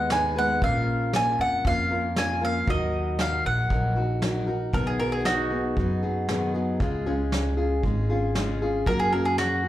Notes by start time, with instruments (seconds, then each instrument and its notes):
Already playing: upright bass D#2, steel-string acoustic guitar D#4 B4, mandolin F#5
0.10 steel-string acoustic guitar G#3 B3 D#4 B4, mandolin G#5, snare
0.36 steel-string acoustic guitar G#3 B3 D#4 B4, mandolin F#5
0.62 upright bass A#1, steel-string acoustic guitar A#2 F3 A#3 C#4 F4 A#4, mandolin F5, kick
1.13 steel-string acoustic guitar A#3 C#4 F4 A#4, mandolin G#5, snare
1.39 upright bass F2, mandolin F#5
1.65 upright bass F2, steel-string acoustic guitar A#3 C#4 F4 A#4, mandolin F5, kick
1.91 steel-string acoustic guitar A#3 C#4 F4 A#4
2.16 steel-string acoustic guitar A#3 C#4 F4 A#4, mandolin G#5, snare
2.41 steel-string acoustic guitar A#3 C#4 F4 A#4, mandolin F5
2.68 upright bass D#2, steel-string acoustic guitar D#3 F#3 D#4 F#4 A#4, mandolin D#5, kick
3.18 steel-string acoustic guitar F#3 D#4 F#4 A#4, mandolin F5, snare
3.45 upright bass A#1, mandolin F#5
3.70 upright bass A#1, steel-string acoustic guitar F#3 D#4 F#4 A#4, kick
3.96 steel-string acoustic guitar D#4 F#4 A#4
4.22 steel-string acoustic guitar F#3 D#4 F#4 A#4, snare
4.47 steel-string acoustic guitar D#4 F#4 A#4
4.73 upright bass B1, steel-string acoustic guitar B2 D#3 F#3 B3 D#4 G#4, mandolin A#4, kick
4.87 mandolin G#4
4.99 steel-string acoustic guitar B2 D#3 F#3 B3 D#4 G#4, mandolin A#4
5.12 mandolin G#4
5.25 mandolin D#4 F#4, snare
5.50 steel-string acoustic guitar F#3 B3 D#4 G#4
5.77 upright bass F#2, steel-string acoustic guitar F#3 B3 D#4 G#4, kick
6.02 steel-string acoustic guitar F#3 B3 D#4 G#4
6.28 steel-string acoustic guitar B2 D#3 F#3 B3 D#4 G#4, snare
6.54 steel-string acoustic guitar F#3 B3 D#4 G#4
6.80 upright bass C#2, steel-string acoustic guitar C#3 G#3 C#4 F4 G#4, kick
7.06 steel-string acoustic guitar C#3 G#3 C#4 F4 G#4
7.32 snare
7.57 steel-string acoustic guitar C#4 F4 G#4
7.83 upright bass G#1, steel-string acoustic guitar G#3 C#4 F4 G#4, kick
8.10 steel-string acoustic guitar C#4 F4 G#4
8.35 steel-string acoustic guitar C#3 G#3 C#4 F4 G#4, snare
8.62 steel-string acoustic guitar C#4 F4 G#4
8.86 upright bass F#2, steel-string acoustic guitar F#3 A#3 C#4 F#4 G#4, mandolin A#4, kick
9.00 mandolin G#4
9.13 steel-string acoustic guitar F#3 A#3 C#4 F#4 G#4, mandolin A#4
9.25 mandolin G#4
9.38 mandolin F#4, snare
9.63 steel-string acoustic guitar C#4 F#4 G#4